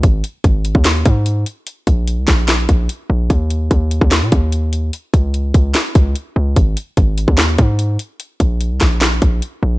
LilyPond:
<<
  \new Staff \with { instrumentName = "808-style bass" } { \clef bass \time 4/4 \key aes \mixolydian \tempo 4 = 147 aes,,8 r8 aes,,8. ees,8. aes,4 r8 | r8 bes,,8. c,16 bes,,4 bes,,8 r8 bes,,8 | ees,4 ees,8. ees,8 bes,16 ees,4. | r8 des,4 des,8 r8 des,8 r8 des,8 |
aes,,8 r8 aes,,8. ees,8. aes,4 r8 | r8 bes,,8. c,16 bes,,4 bes,,8 r8 bes,,8 | }
  \new DrumStaff \with { instrumentName = "Drums" } \drummode { \time 4/4 <hh bd>8 hh8 <hh bd>8 hh16 bd16 <hc hh sn>8 <hh bd>8 hh8 hh8 | hh8 <hh bd>8 hh8 <hc hh bd sn>8 <hc hh sn>8 <hh bd>8 hh4 | <hh bd>8 hh8 <hh bd>8 hh16 bd16 <hc hh sn>8 <hh bd>8 hh8 hh8 | hh8 <hh bd>8 hh8 <hh bd>8 <hc hh sn>8 <hh bd>8 hh4 |
<hh bd>8 hh8 <hh bd>8 hh16 bd16 <hc hh sn>8 <hh bd>8 hh8 hh8 | hh8 <hh bd>8 hh8 <hc hh bd sn>8 <hc hh sn>8 <hh bd>8 hh4 | }
>>